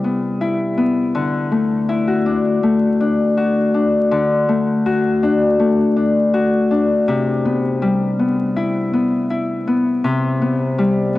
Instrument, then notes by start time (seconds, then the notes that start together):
harp
Already playing: C3 G3 E4
0.04 B3
0.41 E4
0.78 B3
1.15 D3
1.52 A3
1.89 E4
2.08 F#4
2.26 D4
2.63 A3
3.00 D4
3.37 F#4
3.74 D4
4.11 D3
4.49 A3
4.86 F#4
5.23 D4
5.60 A3
5.97 D4
6.34 F#4
6.71 D4
7.08 C3
7.45 B3
7.82 G3
8.19 B3
8.56 E4
8.93 B3
9.30 E4
9.68 B3
10.04 C3
10.42 B3
10.78 G3
11.15 B3